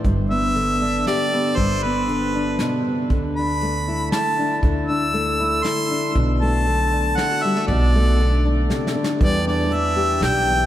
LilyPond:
<<
  \new Staff \with { instrumentName = "Harmonica" } { \time 3/4 \key e \minor \tempo 4 = 118 r8 e''4. d''4 | c''8 b'2 r8 | r8 b''4. a''4 | r8 e'''4. c'''4 |
r8 a''4. fis''8 e''8 | d''2 r4 | d''8 d''8 e''4 g''4 | }
  \new Staff \with { instrumentName = "Harmonium" } { \time 3/4 \key e \minor r2. | r2. | r2. | r2. |
r2. | r2. | <e d' g'>2. | }
  \new Staff \with { instrumentName = "Steel-string acoustic guitar" } { \time 3/4 \key e \minor << { g8 b4 d'8 g'8 b8 | r8 b4 d'4. | r8 d'4 e'8 e'8 d'8 | r8 d'4 e'8 e'8 d'8 |
r8 a4 d'8 e'16 fis'16 g16 a16 | r8 a4 d'4. | g8 d'4 g'4. | } \\ { g,4 d2 | g,4 d4 b,8 c8 | d4 a2 | d4 a2 |
b,4 d2 | b,4 d4 c8 d8 | e,4 r4. e,8 | } >> }
  \new Staff \with { instrumentName = "Upright bass" } { \clef bass \time 3/4 \key e \minor g,,2 r4 | g,,2 r4 | d,2 r4 | d,2 r4 |
b,,2 r4 | b,,2 r4 | e,2 b,,4 | }
  \new DrumStaff \with { instrumentName = "Drums" } \drummode { \time 3/4 <hh bd>4 hh4 <hh sn>4 | <hh bd>4 hh4 <hh sn>4 | <hh bd>4 hh4 <hh sn>4 | <hh bd>4 hh4 <hh sn>4 |
<hh bd>4 hh4 <hh sn>4 | <hh bd>4 hh4 \tuplet 3/2 { sn8 sn8 sn8 } | <hh bd>4 hh4 <hh sn>4 | }
>>